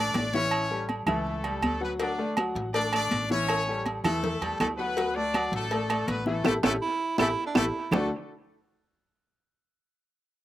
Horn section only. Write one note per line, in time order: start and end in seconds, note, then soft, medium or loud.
0.00 0.32 D4 medium
0.00 0.32 D5 loud
0.34 0.86 C#4 medium
0.34 0.85 C#5 loud
1.08 1.60 A3 medium
1.08 1.60 A4 medium
1.64 1.81 A3 medium
1.64 1.81 A4 medium
1.82 1.91 B3 medium
1.82 1.92 B4 medium
1.99 2.34 D4 medium
1.99 2.34 D5 medium
2.74 2.91 D4 medium
2.74 2.91 D5 loud
2.94 3.28 D4 medium
2.94 3.28 D5 loud
3.31 3.83 C#4 medium
3.31 3.82 C#5 loud
4.04 4.56 A3 medium
4.04 4.56 A4 loud
4.59 4.68 A3 medium
4.59 4.67 A4 medium
4.77 5.12 B3 medium
4.77 5.12 B4 loud
5.15 5.52 D4 medium
5.15 5.52 D5 loud
5.54 6.05 A3 medium
5.54 6.05 A4 medium
6.08 6.26 B3 medium
6.08 6.26 B4 loud
6.27 6.44 A3 medium
6.27 6.44 A4 medium
6.45 6.54 A3 loud
6.45 6.54 E4 loud
6.45 6.54 G4 loud
6.45 6.54 A4 loud
6.63 6.72 A3 loud
6.63 6.72 E4 loud
6.63 6.73 G4 loud
6.63 6.72 A4 loud
7.18 7.27 A3 medium
7.18 7.28 E4 loud
7.18 7.27 G4 loud
7.18 7.27 A4 loud
7.56 7.65 A3 loud
7.56 7.65 E4 loud
7.56 7.65 G4 loud
7.56 7.65 A4 loud
7.91 8.09 A3 medium
7.91 8.09 A4 medium